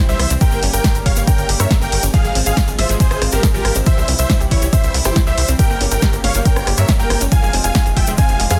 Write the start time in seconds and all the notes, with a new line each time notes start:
Already playing: C3 E3 G3 E4
0.09 C2 G3 C5 E5, shaker
0.19 C2, cross-stick, open hi-hat
0.30 C2 C4, closed hi-hat, shaker
0.41 C#3 G3 A#3 G4 A#4 G5, kick, closed hi-hat, shaker
0.51 G1 A#3, shaker
0.63 G1 C#4, open hi-hat
0.73 G1 A#4 G5, closed hi-hat, shaker
0.84 G4, kick, snare, closed hi-hat, shaker
0.95 G1 A#4, closed hi-hat, shaker
1.06 G1 G3 C#5 F5, kick, open hi-hat
1.16 G1 A#3, closed hi-hat, shaker
1.27 C#4 A#4 G5, kick, closed hi-hat, shaker
1.38 G1, closed hi-hat, shaker
1.49 G1 G4, open hi-hat
1.60 G2 A#4 C#5 E5, cross-stick, closed hi-hat, shaker
1.71 G3, kick, snare, closed hi-hat, shaker
1.81 G1 A#3 A#4 G5, shaker
1.92 G1, open hi-hat
2.03 G1 C#4, closed hi-hat, shaker
2.13 C3 F3 G#3 F4 G#4 F5, kick, closed hi-hat, shaker
2.25 G#1 G#3, closed hi-hat, shaker
2.35 G#1 C4, open hi-hat
2.46 G#1 G#4 F5, closed hi-hat, shaker
2.57 F4, kick, snare, closed hi-hat, shaker
2.68 G#1 G#4, closed hi-hat, shaker
2.79 G#1 F3 C5 E5, snare, open hi-hat
2.89 G#1 G#3, closed hi-hat, shaker
3.00 C4 G#4 C5, kick, closed hi-hat, shaker
3.11 G#1, cross-stick, closed hi-hat, shaker
3.22 G#1 C4, cross-stick, open hi-hat
3.32 G#1 C4 G4 A#4, closed hi-hat, shaker
3.43 G#4, kick, snare, closed hi-hat, shaker
3.54 G#1 F3 G4 A#4, shaker
3.65 G#1, cross-stick, open hi-hat
3.75 G#1 C4, closed hi-hat, shaker
3.86 E3 G3 E4 C5 E5, kick, closed hi-hat, shaker
3.97 C2 G3, shaker
4.08 C2 C4, open hi-hat
4.19 C2 C5 E5, closed hi-hat, shaker
4.30 E4, kick, snare, closed hi-hat, shaker
4.40 C2 G4, closed hi-hat, shaker
4.51 C2 E3 E4 C#5, kick, open hi-hat
4.62 C2 G3, closed hi-hat, shaker
4.73 C4 C5 E5, kick, closed hi-hat, shaker
4.84 C2, closed hi-hat, shaker
4.94 C2 E4, open hi-hat
5.05 G1 E4 G4 C5, cross-stick, closed hi-hat, shaker
5.16 E3, kick, snare, closed hi-hat, shaker
5.27 C2 G3 C5 E5, shaker
5.38 C2, open hi-hat
5.48 C2 C4, closed hi-hat, shaker
5.59 C#3 G3 A#3 G4 A#4 G5, kick, closed hi-hat, shaker
5.70 G1 A#3, shaker
5.81 G1 C#4, open hi-hat
5.91 G1 A#4 G5, closed hi-hat, shaker
6.02 G4, kick, snare, closed hi-hat, shaker
6.13 G1 A#4, closed hi-hat, shaker
6.24 G1 G3 C#5 F5, snare, open hi-hat
6.34 G1 A#3, closed hi-hat, shaker
6.45 C#4 A#4 G5, kick, closed hi-hat, shaker
6.56 G1, cross-stick, closed hi-hat, shaker
6.67 G1 G4, cross-stick, open hi-hat
6.77 G2 A#4 C#5 E5, closed hi-hat, shaker
6.88 G3, kick, snare, closed hi-hat, shaker
6.99 G1 A#3 A#4 G5, shaker
7.10 G1, cross-stick, open hi-hat
7.21 G1 C#4, closed hi-hat, shaker
7.32 C3 F3 G#3 F4 F5 G#5, kick, closed hi-hat, shaker
7.42 F1 G#3, shaker
7.53 F1 C4, open hi-hat
7.64 F1 F5 G#5, closed hi-hat, shaker
7.75 F4, kick, snare, closed hi-hat, shaker
7.86 F1 G#4, closed hi-hat, shaker
7.97 F1 F3 E5 G5, kick, open hi-hat
8.07 F1 G#3, closed hi-hat, shaker
8.18 C4 F5 G#5, kick, closed hi-hat, shaker
8.28 F1, closed hi-hat, shaker
8.40 F1 F4, open hi-hat
8.50 F2 G#4 F5, cross-stick, closed hi-hat, shaker